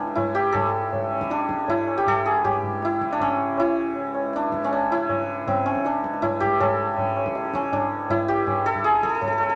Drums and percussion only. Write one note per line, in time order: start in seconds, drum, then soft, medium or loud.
0.07 tabla te medium
0.17 tabla na medium
0.17 tabla ge medium
0.35 tabla te medium
0.54 tabla na loud
0.54 tabla ge loud
0.93 tabla tin medium
0.93 tabla ge medium
1.12 tabla na medium
1.21 tabla ke medium
1.30 tabla te medium
1.40 tabla te medium
1.49 tabla ke medium
1.59 tabla te medium
1.68 tabla tin medium
1.68 tabla ge medium
1.88 tabla na medium
2.07 tabla tin medium
2.07 tabla ge medium
2.44 tabla na medium
2.44 tabla ge medium
2.63 tabla ge medium
2.82 tabla te medium
2.92 tabla te medium
3.01 tabla ke medium
3.11 tabla te medium
3.20 tabla tin medium
3.20 tabla ge medium
3.58 tabla na medium
3.96 tabla tin medium
4.15 tabla na medium
4.33 tabla te medium
4.43 tabla te medium
4.52 tabla ke medium
4.62 tabla te medium
4.71 tabla tin medium
4.90 tabla na medium
5.09 tabla na medium
5.09 tabla ge medium
5.47 tabla tin medium
5.47 tabla ge medium
5.66 tabla na medium
5.75 tabla ke medium
5.85 tabla te medium
5.94 tabla te medium
6.04 tabla ke medium
6.14 tabla te medium
6.23 tabla na medium
6.23 tabla ge medium
6.42 tabla ge medium
6.60 tabla na loud
6.60 tabla ge loud
6.98 tabla tin medium
6.98 tabla ge medium
7.16 tabla na medium
7.26 tabla ke medium
7.35 tabla te medium
7.45 tabla te medium
7.54 tabla ke medium
7.63 tabla te medium
7.72 tabla tin medium
7.72 tabla ge medium
8.10 tabla tin medium
8.10 tabla ge medium
8.47 tabla na medium
8.47 tabla ge medium
8.66 tabla te medium
8.75 tabla ge medium
8.85 tabla te medium
8.94 tabla te medium
9.03 tabla ke medium
9.12 tabla te medium
9.22 tabla tin medium
9.22 tabla ge medium
9.40 tabla na medium